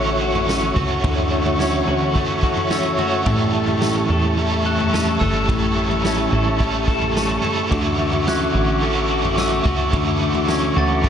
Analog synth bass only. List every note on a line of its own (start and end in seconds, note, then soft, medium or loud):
0.00 0.73 A1 medium
0.76 1.03 C#2 medium
1.04 1.84 D2 loud
1.88 2.95 D2 medium
3.26 4.06 A1 loud
4.10 5.17 E2 medium
5.21 5.48 G1 medium
5.49 6.28 A1 loud
6.32 7.39 A1 medium
7.71 8.50 D2 loud
8.55 9.62 A1 medium
9.66 9.92 C#2 medium
9.93 10.72 D2 loud
10.77 11.09 D2 medium